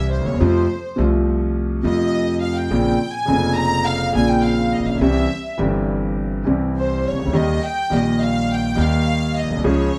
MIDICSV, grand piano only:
0, 0, Header, 1, 2, 480
1, 0, Start_track
1, 0, Tempo, 577478
1, 342, Time_signature, 4, 2, 24, 8
1, 8301, End_track
2, 0, Start_track
2, 0, Title_t, "Grand piano"
2, 0, Program_c, 0, 0
2, 0, Note_on_c, 0, 36, 76
2, 0, Note_on_c, 0, 48, 84
2, 0, Note_on_c, 0, 52, 60
2, 0, Note_on_c, 0, 55, 59
2, 0, Note_on_c, 0, 64, 77
2, 160, Note_on_c, 0, 38, 52
2, 218, Note_on_c, 0, 39, 57
2, 221, Note_off_c, 0, 38, 0
2, 276, Note_on_c, 0, 40, 69
2, 280, Note_off_c, 0, 39, 0
2, 301, Note_off_c, 0, 36, 0
2, 301, Note_off_c, 0, 52, 0
2, 303, Note_off_c, 0, 48, 0
2, 307, Note_off_c, 0, 55, 0
2, 311, Note_off_c, 0, 64, 0
2, 336, Note_on_c, 0, 41, 87
2, 336, Note_on_c, 0, 48, 79
2, 336, Note_on_c, 0, 53, 89
2, 339, Note_off_c, 0, 40, 0
2, 340, Note_on_c, 0, 65, 82
2, 341, Note_on_c, 0, 57, 66
2, 540, Note_off_c, 0, 41, 0
2, 540, Note_off_c, 0, 48, 0
2, 541, Note_off_c, 0, 53, 0
2, 542, Note_off_c, 0, 57, 0
2, 542, Note_off_c, 0, 65, 0
2, 797, Note_on_c, 0, 48, 67
2, 810, Note_off_c, 0, 48, 0
2, 811, Note_on_c, 0, 53, 68
2, 814, Note_on_c, 0, 48, 76
2, 815, Note_on_c, 0, 36, 73
2, 820, Note_on_c, 0, 57, 68
2, 834, Note_on_c, 0, 65, 81
2, 1498, Note_off_c, 0, 53, 0
2, 1499, Note_off_c, 0, 48, 0
2, 1500, Note_off_c, 0, 36, 0
2, 1502, Note_off_c, 0, 57, 0
2, 1509, Note_off_c, 0, 65, 0
2, 1521, Note_on_c, 0, 48, 69
2, 1531, Note_on_c, 0, 53, 77
2, 1537, Note_on_c, 0, 41, 75
2, 1541, Note_on_c, 0, 57, 56
2, 1552, Note_on_c, 0, 65, 76
2, 2210, Note_off_c, 0, 48, 0
2, 2218, Note_off_c, 0, 41, 0
2, 2219, Note_off_c, 0, 53, 0
2, 2220, Note_off_c, 0, 57, 0
2, 2226, Note_off_c, 0, 65, 0
2, 2249, Note_on_c, 0, 49, 72
2, 2254, Note_on_c, 0, 34, 87
2, 2254, Note_on_c, 0, 58, 66
2, 2254, Note_on_c, 0, 60, 68
2, 2258, Note_on_c, 0, 46, 80
2, 2258, Note_on_c, 0, 65, 74
2, 2453, Note_off_c, 0, 49, 0
2, 2455, Note_off_c, 0, 34, 0
2, 2455, Note_off_c, 0, 58, 0
2, 2455, Note_off_c, 0, 60, 0
2, 2457, Note_off_c, 0, 46, 0
2, 2458, Note_off_c, 0, 65, 0
2, 2706, Note_on_c, 0, 49, 67
2, 2718, Note_on_c, 0, 58, 61
2, 2725, Note_on_c, 0, 29, 83
2, 2727, Note_on_c, 0, 60, 68
2, 2728, Note_on_c, 0, 41, 78
2, 2740, Note_on_c, 0, 65, 74
2, 3402, Note_off_c, 0, 49, 0
2, 3408, Note_off_c, 0, 58, 0
2, 3412, Note_off_c, 0, 29, 0
2, 3413, Note_off_c, 0, 41, 0
2, 3413, Note_off_c, 0, 60, 0
2, 3419, Note_off_c, 0, 65, 0
2, 3432, Note_on_c, 0, 49, 70
2, 3448, Note_on_c, 0, 58, 63
2, 3449, Note_on_c, 0, 34, 77
2, 3450, Note_on_c, 0, 46, 82
2, 3456, Note_on_c, 0, 60, 66
2, 3466, Note_on_c, 0, 65, 75
2, 3987, Note_on_c, 0, 33, 51
2, 4034, Note_off_c, 0, 34, 0
2, 4047, Note_on_c, 0, 34, 53
2, 4050, Note_off_c, 0, 33, 0
2, 4110, Note_off_c, 0, 34, 0
2, 4112, Note_on_c, 0, 35, 64
2, 4127, Note_off_c, 0, 49, 0
2, 4135, Note_off_c, 0, 46, 0
2, 4135, Note_off_c, 0, 58, 0
2, 4139, Note_off_c, 0, 60, 0
2, 4144, Note_off_c, 0, 65, 0
2, 4168, Note_on_c, 0, 36, 89
2, 4168, Note_on_c, 0, 48, 91
2, 4168, Note_on_c, 0, 52, 75
2, 4169, Note_on_c, 0, 55, 66
2, 4170, Note_on_c, 0, 60, 70
2, 4172, Note_off_c, 0, 35, 0
2, 4173, Note_on_c, 0, 67, 79
2, 4372, Note_off_c, 0, 36, 0
2, 4372, Note_off_c, 0, 48, 0
2, 4372, Note_off_c, 0, 52, 0
2, 4373, Note_off_c, 0, 55, 0
2, 4373, Note_off_c, 0, 60, 0
2, 4375, Note_off_c, 0, 67, 0
2, 4635, Note_on_c, 0, 52, 72
2, 4647, Note_on_c, 0, 55, 65
2, 4649, Note_on_c, 0, 31, 82
2, 4649, Note_on_c, 0, 43, 75
2, 4659, Note_on_c, 0, 60, 58
2, 4665, Note_on_c, 0, 67, 73
2, 5330, Note_off_c, 0, 52, 0
2, 5336, Note_off_c, 0, 55, 0
2, 5337, Note_off_c, 0, 31, 0
2, 5337, Note_off_c, 0, 43, 0
2, 5342, Note_off_c, 0, 60, 0
2, 5345, Note_off_c, 0, 67, 0
2, 5358, Note_on_c, 0, 52, 64
2, 5367, Note_on_c, 0, 55, 64
2, 5373, Note_on_c, 0, 36, 73
2, 5374, Note_on_c, 0, 48, 81
2, 5379, Note_on_c, 0, 60, 57
2, 5392, Note_on_c, 0, 67, 68
2, 5908, Note_off_c, 0, 36, 0
2, 5921, Note_on_c, 0, 36, 51
2, 5978, Note_on_c, 0, 37, 53
2, 5980, Note_off_c, 0, 36, 0
2, 6030, Note_on_c, 0, 38, 68
2, 6039, Note_off_c, 0, 37, 0
2, 6055, Note_off_c, 0, 52, 0
2, 6059, Note_off_c, 0, 55, 0
2, 6063, Note_off_c, 0, 48, 0
2, 6065, Note_off_c, 0, 60, 0
2, 6072, Note_off_c, 0, 67, 0
2, 6093, Note_on_c, 0, 51, 79
2, 6095, Note_off_c, 0, 38, 0
2, 6095, Note_on_c, 0, 39, 78
2, 6096, Note_on_c, 0, 55, 68
2, 6096, Note_on_c, 0, 58, 67
2, 6097, Note_on_c, 0, 67, 73
2, 6299, Note_off_c, 0, 39, 0
2, 6299, Note_off_c, 0, 51, 0
2, 6300, Note_off_c, 0, 55, 0
2, 6300, Note_off_c, 0, 58, 0
2, 6300, Note_off_c, 0, 67, 0
2, 6566, Note_on_c, 0, 51, 69
2, 6574, Note_on_c, 0, 55, 64
2, 6582, Note_on_c, 0, 46, 82
2, 6583, Note_on_c, 0, 34, 73
2, 6584, Note_on_c, 0, 58, 59
2, 6600, Note_on_c, 0, 67, 79
2, 7259, Note_off_c, 0, 51, 0
2, 7263, Note_off_c, 0, 55, 0
2, 7266, Note_off_c, 0, 46, 0
2, 7267, Note_off_c, 0, 34, 0
2, 7268, Note_off_c, 0, 58, 0
2, 7276, Note_off_c, 0, 67, 0
2, 7276, Note_on_c, 0, 51, 74
2, 7284, Note_on_c, 0, 55, 61
2, 7288, Note_off_c, 0, 51, 0
2, 7293, Note_on_c, 0, 39, 79
2, 7293, Note_on_c, 0, 51, 76
2, 7299, Note_on_c, 0, 58, 58
2, 7310, Note_on_c, 0, 67, 78
2, 7836, Note_on_c, 0, 34, 47
2, 7898, Note_on_c, 0, 35, 56
2, 7899, Note_off_c, 0, 34, 0
2, 7951, Note_on_c, 0, 36, 64
2, 7960, Note_off_c, 0, 35, 0
2, 7977, Note_off_c, 0, 55, 0
2, 7981, Note_off_c, 0, 39, 0
2, 7981, Note_off_c, 0, 51, 0
2, 7984, Note_off_c, 0, 58, 0
2, 7990, Note_off_c, 0, 67, 0
2, 8014, Note_on_c, 0, 49, 82
2, 8014, Note_on_c, 0, 53, 78
2, 8015, Note_on_c, 0, 37, 88
2, 8015, Note_on_c, 0, 56, 72
2, 8016, Note_off_c, 0, 36, 0
2, 8016, Note_on_c, 0, 68, 83
2, 8019, Note_on_c, 0, 61, 62
2, 8218, Note_off_c, 0, 49, 0
2, 8219, Note_off_c, 0, 37, 0
2, 8219, Note_off_c, 0, 53, 0
2, 8219, Note_off_c, 0, 56, 0
2, 8220, Note_off_c, 0, 68, 0
2, 8221, Note_off_c, 0, 61, 0
2, 8301, End_track
0, 0, End_of_file